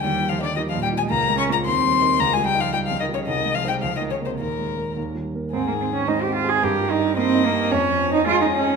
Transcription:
0.01 1.08 D#2 medium
0.01 0.29 G3 medium
0.01 0.30 G5 medium
0.21 0.49 G3 soft
0.29 0.35 F3 medium
0.29 0.42 F5 medium
0.39 0.48 D3 medium
0.39 0.68 D#4 soft
0.39 0.55 D5 medium
0.56 0.63 D#3 medium
0.56 0.85 G3 soft
0.56 0.61 D#5 medium
0.70 0.83 F3 medium
0.70 0.82 F5 medium
0.75 1.04 A#2 soft
0.83 0.97 G3 medium
0.83 0.88 G5 medium
0.93 1.11 G3 medium
0.97 1.12 G#3 medium
0.97 1.03 G#5 medium
1.10 1.63 C#2 medium
1.10 1.37 A#3 medium
1.10 1.37 A#5 medium
1.29 1.58 G#3 medium
1.37 1.51 C#4 medium
1.37 1.43 C#6 medium
1.47 1.64 A#3 medium
1.47 1.63 F4 soft
1.47 1.63 A#4 soft
1.53 1.58 A#5 medium
1.64 2.18 D#2 medium
1.64 2.20 C4 medium
1.64 2.21 C6 medium
1.83 2.12 G3 soft
2.02 2.18 D#4 soft
2.02 2.18 A#4 soft
2.19 3.25 C#2 medium
2.19 2.33 A#3 medium
2.19 2.35 A#5 medium
2.32 2.48 G#3 medium
2.32 2.46 G#5 medium
2.37 2.66 G3 soft
2.46 2.62 G3 medium
2.46 2.62 G5 medium
2.55 2.84 D#4 medium
2.60 2.73 F3 medium
2.60 2.73 F5 medium
2.73 2.79 G3 medium
2.73 3.02 G3 soft
2.73 2.79 G5 medium
2.86 2.99 F3 medium
2.86 2.99 F5 medium
2.91 3.20 C#3 soft
3.00 3.06 D#3 medium
3.00 3.06 D#5 medium
3.09 3.28 G3 soft
3.14 3.30 C#3 medium
3.14 3.19 C#5 medium
3.27 3.81 C2 medium
3.27 3.57 D#3 medium
3.27 3.56 D#5 medium
3.45 3.75 G#3 soft
3.55 3.70 F3 medium
3.55 3.68 F5 medium
3.64 3.81 D#4 soft
3.64 3.81 C5 soft
3.68 3.84 G3 medium
3.68 3.74 G5 medium
3.82 4.38 C#2 soft
3.82 3.97 F3 medium
3.82 3.96 F5 medium
3.97 4.12 D#3 medium
3.97 4.03 D#5 medium
4.01 4.32 G#3 soft
4.11 4.25 C#3 medium
4.11 4.16 C#5 medium
4.20 4.37 A#3 soft
4.20 4.38 A#4 soft
4.25 4.41 C3 soft
4.25 4.31 C5 medium
4.39 4.95 D#2 soft
4.39 4.97 A#2 medium
4.39 4.95 A#4 medium
4.58 4.89 G#3 soft
4.77 4.94 A#3 soft
4.77 4.95 A#4 soft
4.97 5.51 D#2 soft
5.15 5.45 G3 soft
5.35 5.51 A#3 soft
5.35 5.52 A#4 soft
5.52 6.59 G#2 medium
5.52 5.66 C4 medium
5.52 6.09 G#4 medium
5.68 5.73 A#3 medium
5.72 6.01 D#3 soft
5.81 5.87 C4 medium
5.90 6.19 C4 soft
5.94 6.10 C#4 medium
6.07 6.37 G#3 medium
6.07 6.24 D#4 medium
6.07 6.64 C5 medium
6.22 6.35 G4 medium
6.27 6.56 C4 soft
6.35 6.51 F4 medium
6.44 6.62 G#4 medium
6.49 6.65 G#4 medium
6.63 7.68 G2 medium
6.63 6.92 G4 medium
6.63 7.17 A#4 medium
6.81 7.10 G3 medium
6.91 7.17 D#4 medium
6.99 7.28 D#4 medium
7.17 7.46 A#3 medium
7.17 7.47 C4 loud
7.17 7.73 D#5 medium
7.35 7.64 D#4 medium
7.45 7.74 A#3 medium
7.53 7.71 G4 medium
7.71 8.76 F2 medium
7.71 8.13 C#4 loud
7.71 8.25 C#5 medium
7.89 8.19 F3 medium
8.08 8.37 C#4 medium
8.13 8.26 D#4 loud
8.26 8.56 G#3 medium
8.26 8.40 F4 loud
8.26 8.76 G#4 medium
8.41 8.75 C#4 medium
8.41 8.47 D#4 medium
8.56 8.76 C#4 medium
8.64 8.76 G#4 medium

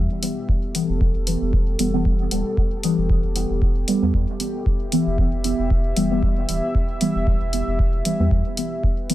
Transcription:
0.00 9.14 B3 medium
0.00 9.14 G4 medium
0.00 0.48 E5 medium
0.23 0.37 E3 medium
0.23 0.37 G3 medium
0.23 0.37 B3 medium
0.23 open hi-hat medium
0.49 4.65 A4 loud
0.49 kick loud
0.75 0.89 E3 medium
0.75 0.89 G3 medium
0.75 0.89 B3 loud
0.75 open hi-hat medium
0.89 1.10 E1 loud
1.01 kick loud
1.15 1.37 E1 medium
1.27 1.76 E3 medium
1.27 1.76 G3 medium
1.27 1.76 B3 medium
1.27 open hi-hat medium
1.41 1.76 E1 loud
1.53 kick loud
1.79 2.28 E1 loud
1.79 1.90 E3 medium
1.79 1.90 G3 medium
1.79 1.90 B3 loud
1.79 open hi-hat medium
1.94 2.14 E3 loud
1.94 2.14 G3 medium
1.94 2.14 B3 loud
2.05 kick loud
2.31 2.43 D1 medium
2.31 2.46 E3 medium
2.31 2.46 G3 medium
2.31 2.46 B3 medium
2.31 open hi-hat medium
2.57 kick loud
2.83 2.98 E3 medium
2.83 2.98 G3 medium
2.83 2.98 B3 loud
2.83 open hi-hat medium
2.98 3.19 E1 loud
3.10 kick loud
3.24 3.45 E1 medium
3.36 3.85 E3 medium
3.36 3.85 G3 medium
3.36 3.85 B3 medium
3.36 open hi-hat medium
3.50 3.85 E1 loud
3.62 kick loud
3.88 3.99 E3 medium
3.88 3.99 G3 medium
3.88 3.99 B3 loud
3.88 open hi-hat medium
4.02 4.12 E2 medium
4.02 4.22 E3 medium
4.02 4.22 G3 medium
4.02 4.22 B3 loud
4.14 4.26 E2 medium
4.14 kick loud
4.40 4.54 E3 medium
4.40 4.54 G3 medium
4.40 4.54 B3 medium
4.40 open hi-hat medium
4.66 8.82 E5 loud
4.66 kick loud
4.92 5.07 E3 medium
4.92 5.07 G3 medium
4.92 5.07 B3 medium
4.92 open hi-hat medium
5.07 5.28 E1 loud
5.18 kick loud
5.33 5.54 E1 medium
5.44 5.94 E3 medium
5.44 5.94 G3 medium
5.44 5.94 B3 medium
5.44 open hi-hat medium
5.59 5.93 E1 medium
5.70 kick loud
5.96 6.46 E1 loud
5.96 6.08 E3 medium
5.96 6.08 G3 medium
5.96 6.08 B3 loud
5.96 open hi-hat medium
6.11 6.31 E3 medium
6.11 6.31 G3 medium
6.11 6.31 B3 loud
6.23 kick loud
6.49 6.61 D1 medium
6.49 6.63 E3 medium
6.49 6.63 G3 medium
6.49 6.63 B3 medium
6.49 open hi-hat medium
6.75 kick loud
7.01 7.15 E3 medium
7.01 7.15 G3 medium
7.01 7.15 B3 loud
7.01 open hi-hat medium
7.15 7.37 E1 loud
7.27 kick loud
7.41 7.63 E1 medium
7.53 8.02 E3 medium
7.53 8.02 G3 medium
7.53 8.02 B3 medium
7.53 open hi-hat medium
7.67 8.02 E1 loud
7.79 kick loud
8.05 8.16 E3 medium
8.05 8.16 G3 medium
8.05 8.16 B3 loud
8.05 open hi-hat medium
8.20 8.29 E2 medium
8.20 8.40 E3 loud
8.20 8.40 G3 medium
8.20 8.40 B3 loud
8.31 8.43 E2 medium
8.31 kick loud
8.57 8.72 E3 medium
8.57 8.72 G3 medium
8.57 8.72 B3 medium
8.57 open hi-hat medium
8.83 9.14 B4 medium
8.83 kick loud
9.10 9.14 E3 medium
9.10 9.14 G3 medium
9.10 9.14 B3 loud
9.10 open hi-hat medium

